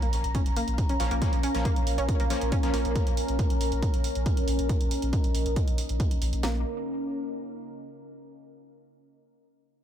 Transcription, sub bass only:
0.02 0.12 A#1 medium
0.13 0.24 A#1 loud
0.24 0.35 A#1 medium
0.46 0.56 A#1 medium
0.68 0.78 A#1 medium
1.00 1.11 A#1 loud
1.11 1.21 A#1 medium
1.33 1.43 A#1 medium
1.55 1.65 A#1 medium
1.76 1.86 A#1 medium
1.87 1.98 A#1 loud
1.98 2.08 A#1 medium
2.20 2.30 A#1 medium
2.42 2.52 A#1 medium
2.74 2.85 A#1 loud
2.85 2.95 A#1 medium
3.07 3.17 A#1 medium
3.29 3.39 A#1 medium
3.50 3.60 A#1 medium
3.61 3.71 A#1 loud
3.72 3.82 A#1 medium
3.94 4.04 A#1 medium
4.16 4.26 A#1 medium
4.48 4.58 A#1 loud
4.59 4.69 A#1 medium
4.81 4.91 A#1 medium
5.02 5.13 A#1 medium
5.24 5.34 A#1 medium
5.35 5.45 A#1 loud
5.46 5.56 A#1 medium
5.68 5.78 A#1 medium
5.89 6.00 A#1 medium
6.22 6.32 A#1 loud
6.33 6.43 A#1 medium
6.43 6.64 A#1 loud

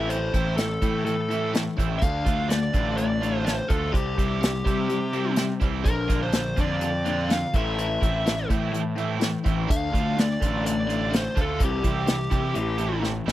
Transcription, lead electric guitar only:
0.00 0.11 E5 medium
0.09 0.57 C5 medium
0.57 1.02 A4 medium
1.05 1.50 A4 medium
1.99 2.50 F5 loud
2.49 2.96 D5 medium
2.97 3.45 D5 loud
3.46 3.71 C5 medium
3.68 3.93 A4 medium
3.94 5.34 G4 medium
5.85 6.19 A#4 medium
6.23 6.59 C5 medium
6.61 7.34 D5 medium
7.31 7.55 F5 medium
7.57 8.47 E5 medium
9.71 10.19 F5 loud
10.19 10.66 D5 medium
10.67 11.15 D5 medium
11.16 11.39 C5 medium
11.41 11.63 A4 medium
11.64 13.01 G4 medium

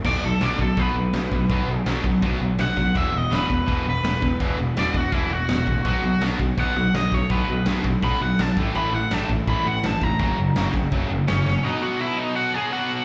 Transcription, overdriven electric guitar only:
0.07 0.23 D5 medium
0.25 0.42 A4 medium
0.43 0.60 D5 medium
0.61 0.80 A4 medium
0.80 1.84 B4 medium
2.61 2.95 F#5 medium
2.98 3.17 E5 medium
3.17 3.33 D#5 medium
3.35 3.86 B4 medium
3.90 4.58 B4 medium
4.79 4.96 D5 medium
4.97 5.15 F#4 loud
5.15 5.33 E4 medium
5.33 5.85 F#4 medium
5.88 6.22 F#4 loud
6.60 6.94 F#5 loud
6.96 7.14 D#5 loud
7.14 7.31 C#5 medium
7.31 7.66 B4 loud
8.04 8.21 B5 loud
8.23 8.41 F#5 medium
8.41 8.58 A5 loud
8.77 8.94 B5 loud
8.95 9.13 F#5 medium
9.13 9.30 A5 medium
9.49 9.66 B5 medium
9.67 9.84 F#5 loud
9.86 10.03 A5 loud
10.03 10.73 A#5 loud
11.29 11.46 C#4 medium
11.29 11.45 C#5 medium
11.46 11.64 C#4 medium
11.46 11.65 C#5 loud
11.64 11.82 D#4 medium
11.64 11.82 D#5 loud
11.82 12.00 F#4 medium
11.82 12.00 F#5 loud
12.00 12.18 E4 medium
12.00 12.18 E5 loud
12.18 12.36 D#4 medium
12.18 12.37 D#5 loud
12.36 12.54 F#4 medium
12.36 12.54 F#5 loud
12.54 12.72 G#4 medium
12.54 12.72 G#5 loud
12.73 13.05 F#4 medium
12.73 13.05 F#5 loud

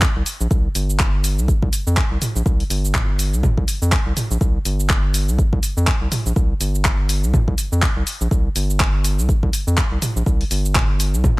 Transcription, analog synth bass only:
0.16 0.23 C2 loud
0.41 0.47 A#1 loud
0.51 0.68 C2 loud
0.75 1.40 G1 medium
1.38 1.53 C2 medium
1.62 1.69 C2 loud
1.87 2.02 F2 loud
2.11 2.18 C2 loud
2.36 2.42 A#1 loud
2.46 2.63 C2 loud
2.70 3.35 G1 medium
3.33 3.48 C2 medium
3.58 3.64 C2 loud
3.82 3.97 F2 loud
4.06 4.13 C2 loud
4.31 4.37 A#1 loud
4.41 4.58 C2 loud
4.65 5.30 G1 medium
5.28 5.43 C2 medium
5.53 5.59 C2 loud
5.77 5.92 F2 loud
6.01 6.08 C2 loud
6.26 6.33 A#1 loud
6.36 6.54 C2 loud
6.60 7.25 G1 medium
7.23 7.38 C2 medium
7.48 7.55 C2 loud
7.72 7.87 F2 medium
7.97 8.03 C2 loud
8.21 8.28 A#1 loud
8.31 8.49 C2 loud
8.56 9.20 G1 medium
9.18 9.33 C2 medium
9.43 9.50 C2 loud
9.67 9.82 F2 loud
9.92 9.98 C2 loud
10.16 10.23 A#1 loud
10.26 10.44 C2 loud
10.51 11.15 G1 medium
11.14 11.29 C2 medium

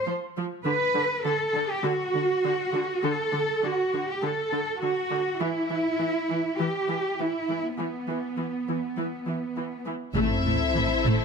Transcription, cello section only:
0.65 1.21 B4 medium
1.25 1.70 A4 medium
1.70 1.85 G4 medium
1.85 3.04 F#4 medium
3.04 3.63 A4 medium
3.63 4.07 F#4 medium
4.08 4.22 G4 soft
4.23 4.82 A4 soft
4.81 5.40 F#4 medium
5.40 6.59 E4 medium
6.59 7.19 G4 soft
7.18 7.78 E4 soft
7.78 9.82 B3 soft
10.17 10.25 A2 soft
10.47 10.55 A2 soft
10.76 10.84 A2 soft
11.05 11.13 A2 soft

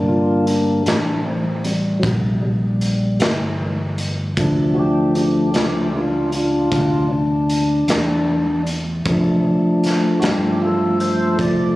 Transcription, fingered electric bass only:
0.00 0.83 G1 medium
0.86 2.00 A1 medium
2.03 3.17 A#1 medium
3.20 4.34 G1 medium
4.37 5.51 D2 medium
5.54 6.68 C#2 medium
6.72 7.85 D2 medium
7.88 9.01 E2 medium
9.05 10.19 F2 medium
10.22 11.35 G2 medium
11.39 11.76 F2 medium

